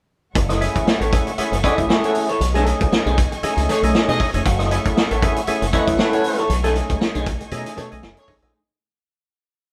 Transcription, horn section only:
1.65 1.74 A3 medium
1.65 1.74 F#4 medium
1.65 1.74 C#5 medium
2.04 2.21 A3 loud
2.04 2.21 F#4 medium
2.04 2.21 C#5 loud
3.69 3.79 A3 medium
3.69 3.78 G#4 loud
3.69 3.79 C#5 loud
4.09 4.25 A3 medium
4.09 4.25 G#4 medium
4.09 4.25 D#5 loud
5.74 5.83 A3 medium
5.74 5.83 F#4 medium
5.74 5.83 C#5 medium
6.14 6.45 A3 loud
6.14 6.44 F#4 medium
6.14 6.45 C#5 loud
7.78 7.87 A3 medium
7.78 7.87 G#4 medium
7.78 7.87 C#5 loud
8.18 8.34 A3 loud
8.18 8.34 G#4 medium
8.18 8.34 C#5 loud

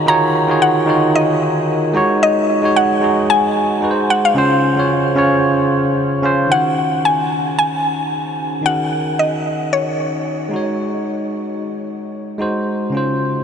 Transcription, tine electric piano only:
0.00 0.06 D#3 medium
0.00 0.07 D#4 medium
0.00 0.07 F4 medium
0.00 0.08 F#4 medium
0.00 0.09 G#4 medium
0.00 0.10 C#5 medium
0.00 1.97 D#5 medium
0.06 0.40 D#3 medium
0.06 0.40 D#4 medium
0.06 0.40 F4 medium
0.06 0.41 F#4 medium
0.06 0.41 G#4 medium
0.06 0.41 C#5 loud
0.48 0.80 D#3 medium
0.48 0.80 D#4 medium
0.48 0.81 F4 medium
0.48 0.81 F#4 medium
0.48 0.81 G#4 medium
0.48 0.82 C#5 medium
0.86 1.73 D#3 medium
0.86 1.74 D#4 medium
0.86 1.74 F4 medium
0.86 1.75 F#4 medium
0.86 1.75 G#4 medium
0.86 1.75 C#5 medium
1.93 2.48 G#3 loud
1.93 2.48 D#4 medium
1.93 2.49 F#4 medium
1.93 2.50 C#5 loud
2.62 2.94 G#3 medium
2.62 2.95 D#4 medium
2.62 2.95 F#4 medium
2.62 2.96 C#5 medium
3.01 3.80 G#3 medium
3.01 3.81 D#4 medium
3.01 3.82 F#4 medium
3.01 3.84 G#4 medium
3.81 4.26 G#3 medium
3.81 4.26 D#4 medium
3.81 4.27 F#4 medium
3.81 3.91 B4 medium
3.91 4.31 C5 medium
4.35 4.68 C#3 loud
4.35 4.69 C#4 medium
4.35 4.69 F4 medium
4.35 4.70 C5 loud
4.76 5.09 C#3 medium
4.76 5.09 C#4 medium
4.76 5.10 F4 medium
4.76 5.10 C#5 medium
5.15 6.02 C#3 loud
5.15 6.03 C#4 medium
5.15 6.03 F4 medium
5.15 6.04 C#5 loud
6.22 6.45 C#3 medium
6.22 6.45 C#4 medium
6.22 6.46 F4 medium
6.22 6.47 C5 loud
6.47 8.59 D#3 medium
6.47 8.61 C#4 medium
6.47 8.60 D#4 medium
6.51 8.61 F#4 medium
6.51 8.62 G#4 medium
6.51 8.63 C#5 medium
8.61 10.47 D#3 medium
8.61 10.48 C#4 medium
8.61 10.48 D#4 medium
8.66 10.49 F#4 medium
8.66 10.50 G#4 medium
8.66 10.50 A#4 medium
10.49 12.34 G#3 medium
10.49 12.36 D#4 medium
10.54 12.37 F#4 medium
10.54 12.38 C#5 medium
12.38 12.93 G#3 medium
12.38 12.93 D#4 medium
12.38 12.94 F#4 medium
12.38 12.94 C5 medium
12.90 13.44 C#3 medium
12.90 13.44 C#4 medium
12.95 13.44 F4 medium
12.95 13.44 C5 medium

